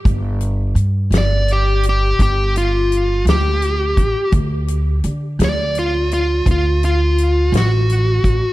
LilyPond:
<<
  \new Staff \with { instrumentName = "Lead electric guitar" } { \time 12/8 \key g \major \tempo 4. = 56 r4. d''8 g'8 g'8 g'8 f'4 g'4. | r4. d''8 f'8 f'8 f'8 f'4 fis'4. | }
  \new Staff \with { instrumentName = "Upright bass" } { \clef bass \time 12/8 \key g \major g,,4 g,8 g,,4. g,,4. d,4 a,,16 r16 | d,4 d8 d,4. d,4. a,,4 a,,16 r16 | }
  \new DrumStaff \with { instrumentName = "Drums" } \drummode { \time 12/8 <hh bd>8 hh8 hh8 <hh sn>8 hh8 hh8 <hh bd>8 hh8 hh8 <hh sn>8 hh8 <hh bd>8 | <hh bd>8 hh8 hh8 <hh sn>8 hh8 hh8 <hh bd>8 hh8 hh8 <hh sn>8 hh8 <hh bd>8 | }
>>